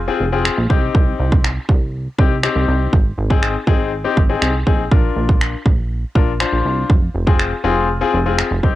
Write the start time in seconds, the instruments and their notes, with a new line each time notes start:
0.08 grand piano C4 F4 G#4
0.20 analog synth bass F1
0.32 grand piano C4 F4 G#4
0.45 finger snap
0.58 analog synth bass A#1
0.70 analog synth bass C2, grand piano C4 D#4 G4, kick
0.95 analog synth bass C2, kick
1.20 analog synth bass C2
1.32 kick
1.44 finger snap
1.69 analog synth bass C2, kick
2.18 analog synth bass C2, grand piano C4 D#4 G4, kick
2.43 grand piano C4 D#4 G4, finger snap
2.56 analog synth bass C2
2.68 analog synth bass C2
2.93 analog synth bass G#1, kick
3.18 analog synth bass G#1
3.30 grand piano C4 D#4 G#4, kick
3.43 finger snap
3.67 analog synth bass G#1, grand piano C4 D#4 G#4, kick
4.04 grand piano C4 D#4 G4
4.17 analog synth bass G#1, kick
4.29 grand piano C4 D#4 G#4
4.42 analog synth bass C2, finger snap
4.66 analog synth bass A#1, grand piano C4 D#4 G#4, kick
4.91 analog synth bass A#1, grand piano D4 F4 A#4, kick
5.16 analog synth bass A#1
5.29 kick
5.41 finger snap
5.66 analog synth bass A#1, kick
6.15 analog synth bass A#1, grand piano D4 F4 A#4, kick
6.40 grand piano D4 F4 C5, finger snap
6.53 analog synth bass A#1
6.65 analog synth bass C2
6.90 analog synth bass F1, kick
7.15 analog synth bass F1
7.27 grand piano C4 F4 G#4, kick
7.40 finger snap
7.64 analog synth bass F1, grand piano C4 F4 G#4
8.01 grand piano C4 F4 G#4
8.14 analog synth bass F1
8.26 grand piano C4 F4 G#4
8.39 finger snap
8.51 analog synth bass F1
8.63 analog synth bass C2, grand piano C4 D#4 G4, kick